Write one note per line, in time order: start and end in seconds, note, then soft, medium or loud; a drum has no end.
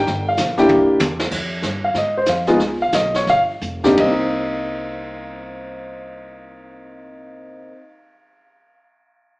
0.00 0.25 G5 medium
0.07 0.37 G1 medium
0.07 brush sweep soft
0.07 snare soft
0.29 0.57 F5 medium
0.37 0.68 A#1 medium
0.37 snare medium
0.37 hi-hat pedal medium
0.57 0.98 A#3 medium
0.57 0.98 D4 medium
0.57 0.98 E4 medium
0.57 0.98 G4 medium
0.57 0.66 G5 medium
0.57 snare soft
0.69 0.88 C2 medium
0.69 high tom soft
0.89 muted upright bass stroke soft
0.99 1.31 E2 medium
0.99 hi-hat pedal medium
0.99 high tom medium
1.20 snare medium
1.31 1.62 F2 medium
1.31 brush sweep soft
1.31 kick medium
1.31 snare soft
1.31 crash medium
1.62 1.94 G2 medium
1.62 snare medium
1.62 hi-hat pedal medium
1.84 1.95 F5 medium
1.94 2.26 G#2 medium
1.94 2.16 D#5 medium
1.94 brush sweep soft
1.94 snare soft
2.17 2.28 C5 medium
2.26 2.58 F2 medium
2.26 2.48 F5 medium
2.26 snare medium
2.26 hi-hat pedal medium
2.47 2.58 G#3 medium
2.47 2.58 B3 medium
2.47 2.58 D#4 medium
2.47 2.58 F4 medium
2.47 snare soft
2.59 2.91 C#2 medium
2.59 brush sweep soft
2.59 snare soft
2.82 2.93 F5 medium
2.92 3.26 B1 medium
2.92 3.15 D#5 medium
2.92 snare medium
2.92 hi-hat pedal medium
3.14 3.27 C#5 medium
3.14 snare soft
3.27 3.61 G1 medium
3.27 3.42 F5 medium
3.27 brush sweep soft
3.27 snare soft
3.61 3.97 F1 medium
3.61 hi-hat pedal soft
3.84 3.86 C3 medium
3.84 3.92 A#3 medium
3.84 3.96 D4 medium
3.84 3.97 D#4 medium
3.84 3.97 G4 medium
3.84 snare medium
3.94 7.67 C2 medium
3.94 7.67 A#3 soft
3.94 kick medium
3.94 ride bell medium
4.00 7.76 C4 soft
4.00 7.70 D#5 medium
4.10 7.84 D#4 medium